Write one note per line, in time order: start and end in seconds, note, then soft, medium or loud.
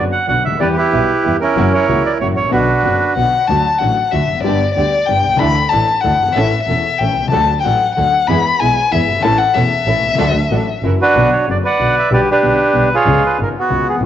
0.00 0.10 F#1 medium
0.00 0.10 B3 soft
0.00 0.10 D4 soft
0.00 0.10 F#4 soft
0.12 0.27 F#5 medium
0.27 0.42 B1 medium
0.27 0.42 B1 soft
0.27 0.42 B2 soft
0.27 0.42 D3 soft
0.27 0.41 F#3 soft
0.27 0.42 B3 soft
0.27 0.42 D4 soft
0.27 0.42 F#4 soft
0.27 0.42 F#4 medium
0.27 0.43 F#5 medium
0.45 0.52 C#2 soft
0.45 0.60 D2 soft
0.45 0.60 E5 medium
0.52 0.56 D2 medium
0.52 0.60 D#2 medium
0.60 0.74 E2 medium
0.60 0.74 E3 medium
0.60 0.74 G3 medium
0.60 0.74 B3 medium
0.60 0.74 E4 medium
0.60 0.74 G4 medium
0.60 0.77 G4 medium
0.60 0.75 B4 medium
0.60 0.67 D5 medium
0.77 1.37 E4 medium
0.77 1.37 G4 medium
0.77 1.36 B4 medium
0.93 1.06 B1 medium
0.93 1.06 B1 soft
0.93 1.06 B2 soft
0.93 1.06 E3 soft
0.93 1.06 G3 soft
0.93 1.06 B3 soft
0.93 1.06 E4 soft
0.93 1.06 G4 medium
0.93 1.06 G4 soft
1.23 1.38 E2 soft
1.23 1.38 E2 medium
1.23 1.37 E3 soft
1.23 1.37 G3 soft
1.23 1.38 B3 soft
1.23 1.38 E4 soft
1.23 1.38 G4 soft
1.23 1.38 G4 medium
1.40 1.86 C#4 medium
1.40 1.73 E4 medium
1.40 1.73 A#4 medium
1.56 1.70 F#1 medium
1.56 1.69 F#2 medium
1.56 1.70 E3 medium
1.56 1.70 F#3 medium
1.56 1.69 A#3 medium
1.56 1.70 A#3 medium
1.56 1.70 C#4 medium
1.56 1.70 E4 medium
1.56 1.70 F#4 medium
1.73 2.18 E4 medium
1.73 2.18 A#4 medium
1.73 2.03 C#5 medium
1.88 2.02 C#2 medium
1.88 2.02 C#3 soft
1.88 2.02 E3 soft
1.88 2.02 A#3 soft
1.88 2.02 C#4 soft
1.88 2.02 E4 soft
1.88 2.02 F#4 medium
1.88 2.02 F#4 soft
2.06 2.12 D5 medium
2.20 2.34 F#1 medium
2.20 2.34 F#2 soft
2.20 2.34 E3 soft
2.20 2.35 F#3 soft
2.20 2.34 A#3 soft
2.20 2.34 C#4 soft
2.20 2.34 E4 soft
2.20 2.34 F#4 medium
2.20 2.35 F#4 soft
2.20 2.28 C#5 medium
2.36 2.52 A1 medium
2.36 2.51 C#5 medium
2.42 2.45 G#1 soft
2.42 2.48 A1 medium
2.49 2.53 A#1 medium
2.49 2.66 B1 medium
2.49 2.65 B2 medium
2.49 2.65 D3 medium
2.49 2.66 F#3 medium
2.49 2.65 B3 medium
2.49 2.66 D4 medium
2.49 2.66 F#4 medium
2.53 3.14 D4 medium
2.53 3.14 F#4 medium
2.53 3.14 B4 medium
2.83 2.98 F#1 medium
2.83 2.98 F#1 soft
2.83 2.98 F#2 soft
2.83 2.98 D3 soft
2.83 2.98 F#3 soft
2.83 2.98 B3 soft
2.83 2.98 D4 soft
2.83 2.98 F#4 soft
3.16 3.30 B1 medium
3.16 3.31 B1 soft
3.16 3.30 B2 soft
3.16 3.30 D3 soft
3.16 3.31 F#3 soft
3.16 3.30 B3 soft
3.16 3.30 D4 soft
3.16 3.30 F#4 soft
3.16 3.31 F#4 soft
3.16 3.49 F#5 medium
3.47 3.63 D2 medium
3.47 3.63 D3 medium
3.47 3.63 F#3 medium
3.47 3.63 A3 medium
3.47 3.63 A3 soft
3.47 3.63 D4 medium
3.47 3.63 F#4 medium
3.47 3.80 A5 medium
3.79 3.95 A1 soft
3.79 3.96 A1 medium
3.79 3.95 A2 soft
3.79 3.95 D3 soft
3.79 3.95 F#3 soft
3.79 3.94 A3 soft
3.79 3.95 A3 soft
3.79 3.95 D4 soft
3.79 3.95 F#4 soft
3.79 4.13 F#5 medium
4.12 4.27 D2 medium
4.12 4.27 D2 soft
4.12 4.27 D3 soft
4.12 4.27 F#3 soft
4.12 4.27 A3 soft
4.12 4.27 D4 soft
4.12 4.27 F#4 medium
4.12 4.27 F#4 soft
4.12 4.43 E5 medium
4.30 4.45 F1 medium
4.35 4.38 E2 soft
4.35 4.41 F2 medium
4.41 4.58 G1 medium
4.41 4.45 F#2 medium
4.41 4.58 G2 medium
4.41 4.58 D3 medium
4.41 4.58 G3 medium
4.41 4.58 B3 medium
4.41 4.58 G4 medium
4.41 4.73 D5 medium
4.45 4.59 G1 medium
4.45 4.59 D4 medium
4.45 4.59 G4 medium
4.74 4.90 D2 medium
4.74 4.91 D2 soft
4.74 4.90 D3 soft
4.74 4.90 G3 soft
4.74 4.90 B3 soft
4.74 4.90 D4 soft
4.74 4.90 G4 medium
4.74 4.91 G4 soft
4.74 5.07 D5 medium
5.06 5.22 G1 medium
5.06 5.22 G1 soft
5.06 5.22 G2 soft
5.06 5.22 D3 soft
5.06 5.22 G3 soft
5.06 5.22 B3 soft
5.06 5.22 D4 soft
5.06 5.22 G4 soft
5.06 5.23 G4 medium
5.06 5.40 G5 medium
5.25 5.33 B1 soft
5.25 5.40 C2 medium
5.32 5.36 C2 medium
5.37 5.41 C#2 medium
5.37 5.54 D2 medium
5.37 5.54 D3 medium
5.37 5.54 E3 medium
5.37 5.54 A3 medium
5.37 5.54 D4 medium
5.37 5.54 E4 medium
5.37 5.54 A4 medium
5.37 5.70 B5 loud
5.41 5.54 D2 medium
5.69 5.86 A1 medium
5.69 5.86 A2 soft
5.69 5.86 E3 soft
5.69 5.86 A3 soft
5.69 5.86 D4 soft
5.69 5.86 E4 soft
5.69 5.86 A4 medium
5.69 6.03 A5 medium
5.73 5.86 A1 medium
5.73 5.86 A4 medium
6.01 6.18 D2 medium
6.01 6.18 D2 soft
6.01 6.18 D3 soft
6.01 6.18 E3 soft
6.01 6.18 A3 soft
6.01 6.18 D4 soft
6.01 6.18 E4 soft
6.01 6.18 A4 medium
6.01 6.18 A4 soft
6.01 6.34 F#5 medium
6.20 6.28 F#1 soft
6.20 6.34 G1 medium
6.29 6.33 G1 medium
6.29 6.36 G#1 medium
6.33 6.49 A1 medium
6.33 6.49 C#4 medium
6.33 6.50 E4 medium
6.33 6.50 A4 medium
6.33 6.63 E5 medium
6.37 6.50 A1 medium
6.37 6.50 A2 medium
6.37 6.50 E3 medium
6.37 6.50 A3 medium
6.37 6.51 C#4 medium
6.37 6.51 A4 medium
6.63 7.00 E5 medium
6.67 6.82 E1 medium
6.67 6.83 E1 soft
6.67 6.82 E2 soft
6.67 6.82 E3 soft
6.67 6.82 A3 soft
6.67 6.82 C#4 soft
6.67 6.83 C#4 soft
6.67 6.82 E4 soft
6.67 6.82 A4 soft
6.67 6.83 A4 soft
6.98 7.14 A1 medium
6.98 7.15 A1 soft
6.98 7.15 A2 soft
6.98 7.15 E3 soft
6.98 7.15 A3 soft
6.98 7.14 C#4 soft
6.98 7.15 C#4 soft
6.98 7.14 E4 soft
6.98 7.15 A4 soft
6.98 7.31 G5 medium
7.15 7.32 C2 soft
7.21 7.25 B1 soft
7.25 7.29 C2 medium
7.25 7.33 C#2 medium
7.31 7.46 D2 medium
7.31 7.47 D2 medium
7.31 7.46 D3 medium
7.31 7.46 F#3 medium
7.31 7.46 A3 medium
7.31 7.46 D4 medium
7.31 7.46 F#4 medium
7.31 7.46 A4 medium
7.31 7.56 A5 medium
7.61 7.79 D4 soft
7.61 7.95 F#5 medium
7.61 7.65 G5 medium
7.65 7.79 A1 soft
7.65 7.79 A1 medium
7.65 7.79 A2 soft
7.65 7.79 F#3 soft
7.65 7.79 A3 soft
7.65 7.79 D4 soft
7.65 7.79 F#4 soft
7.65 7.79 A4 soft
7.96 8.11 D2 soft
7.96 8.11 D2 medium
7.96 8.11 D3 soft
7.96 8.11 F#3 soft
7.96 8.11 A3 soft
7.96 8.11 D4 medium
7.96 8.11 D4 soft
7.96 8.11 F#4 soft
7.96 8.11 A4 soft
7.96 8.29 F#5 medium
8.28 8.43 E2 medium
8.28 8.43 E3 medium
8.28 8.43 G#3 medium
8.28 8.42 B3 medium
8.28 8.43 B3 medium
8.28 8.42 E4 medium
8.28 8.43 G#4 medium
8.28 8.61 B5 loud
8.60 8.75 B1 medium
8.60 8.75 B2 medium
8.60 8.75 E3 soft
8.60 8.75 G#3 soft
8.60 8.74 B3 medium
8.60 8.75 B3 soft
8.60 8.74 E4 soft
8.60 8.74 G#4 medium
8.60 8.75 G#4 soft
8.60 8.93 G#5 loud
8.92 9.06 E2 soft
8.92 9.06 E2 medium
8.92 9.06 E3 medium
8.92 9.06 G#3 soft
8.92 9.06 B3 soft
8.92 9.06 E4 soft
8.92 9.06 G#4 soft
8.92 9.24 E5 medium
9.08 9.16 F#1 soft
9.08 9.24 G1 medium
9.16 9.21 G1 medium
9.21 9.25 G#1 medium
9.21 9.38 A1 medium
9.21 9.38 A2 medium
9.21 9.37 E3 medium
9.21 9.38 A3 medium
9.21 9.37 C#4 medium
9.21 9.38 C#4 medium
9.21 9.37 E4 medium
9.21 9.37 A4 medium
9.21 9.38 A4 medium
9.21 9.40 A5 loud
9.38 9.56 F#5 medium
9.55 9.69 E1 medium
9.55 9.69 E2 medium
9.55 9.69 E3 soft
9.55 9.69 A3 soft
9.55 9.69 C#4 soft
9.55 9.69 C#4 medium
9.55 9.69 E4 soft
9.55 9.69 A4 medium
9.55 10.83 E5 medium
9.86 10.00 A1 medium
9.86 10.01 A1 medium
9.86 10.01 A2 soft
9.86 10.01 E3 soft
9.86 10.01 A3 soft
9.86 10.01 C#4 medium
9.86 10.01 C#4 soft
9.86 10.01 E4 medium
9.86 10.01 A4 medium
9.86 10.01 A4 soft
10.03 10.17 C2 medium
10.07 10.11 B1 soft
10.07 10.15 C2 medium
10.15 10.19 C#2 medium
10.15 10.32 D2 loud
10.15 10.33 D2 medium
10.15 10.32 D3 medium
10.15 10.32 F#3 medium
10.15 10.32 A3 medium
10.15 10.32 D4 medium
10.15 10.33 D4 medium
10.15 10.33 F#4 medium
10.15 10.32 A4 medium
10.15 10.33 A4 medium
10.51 10.65 A1 medium
10.51 10.65 A2 soft
10.51 10.65 F#3 soft
10.51 10.65 A3 soft
10.51 10.65 D4 medium
10.51 10.65 D4 soft
10.51 10.65 F#4 soft
10.51 10.65 A4 medium
10.83 10.97 F#1 medium
10.83 10.97 F#2 medium
10.83 10.97 E3 soft
10.83 10.97 F#3 soft
10.83 10.97 A#3 soft
10.83 10.97 C#4 soft
10.83 10.97 E4 soft
10.83 10.97 F#4 soft
10.83 10.98 F#4 soft
10.83 10.97 A#4 medium
11.01 11.46 D4 medium
11.01 11.46 F#4 medium
11.01 11.31 B4 loud
11.15 11.29 B1 medium
11.15 11.30 B1 medium
11.15 11.30 B2 medium
11.15 11.30 D3 medium
11.15 11.30 F#3 medium
11.15 11.30 B3 medium
11.15 11.30 F#4 medium
11.33 11.49 C#5 medium
11.48 11.62 F#1 soft
11.48 11.62 F#1 medium
11.48 11.62 F#2 soft
11.48 11.61 D3 soft
11.48 11.62 F#3 soft
11.48 11.62 B3 soft
11.48 11.61 F#4 soft
11.48 11.57 D5 medium
11.65 12.09 B4 medium
11.65 12.10 D5 medium
11.65 11.95 F#5 medium
11.79 11.93 B1 medium
11.79 11.93 B1 soft
11.79 11.94 B2 soft
11.79 11.93 D3 soft
11.79 11.94 F#3 soft
11.79 11.94 B3 soft
11.79 11.94 F#4 soft
11.99 12.13 E5 medium
12.11 12.25 B1 medium
12.11 12.25 B2 medium
12.11 12.25 D3 medium
12.11 12.25 G3 medium
12.11 12.25 B3 medium
12.11 12.25 G4 medium
12.11 12.29 G4 medium
12.11 12.30 B4 medium
12.11 12.20 D5 medium
12.31 12.89 D4 medium
12.31 12.89 G4 medium
12.31 12.95 B4 medium
12.43 12.57 B1 soft
12.43 12.57 B1 medium
12.43 12.57 B2 medium
12.43 12.57 D3 soft
12.43 12.57 G3 soft
12.43 12.57 B3 soft
12.43 12.57 G4 soft
12.73 12.88 B1 soft
12.73 12.89 B1 medium
12.73 12.88 B2 soft
12.73 12.88 D3 soft
12.73 12.88 G3 soft
12.73 12.88 B3 soft
12.73 12.88 G4 soft
12.94 13.38 F4 medium
12.94 13.37 G#4 medium
12.94 13.23 C#5 medium
13.06 13.20 C#2 medium
13.06 13.21 C#2 medium
13.06 13.21 C#3 medium
13.06 13.21 G#3 medium
13.06 13.21 B3 medium
13.06 13.21 F4 medium
13.26 13.40 B4 medium
13.38 13.52 G#1 medium
13.38 13.53 G#1 soft
13.38 13.52 G#2 medium
13.38 13.52 C#3 soft
13.38 13.52 G#3 soft
13.38 13.53 B3 soft
13.38 13.52 F4 soft
13.43 13.49 A#4 medium
13.58 14.01 B3 medium
13.58 13.87 F#4 medium
13.70 13.84 C#2 soft
13.70 13.85 C#2 medium
13.70 13.85 C#3 soft
13.70 13.84 G#3 soft
13.70 13.85 B3 soft
13.70 13.85 F4 soft
13.89 13.95 D#2 soft
13.89 13.96 G#4 medium
13.95 13.99 E2 medium
13.99 14.06 F#1 medium
13.99 14.03 F2 medium
13.99 14.06 F#2 medium
13.99 14.06 C#3 medium
13.99 14.06 F#3 medium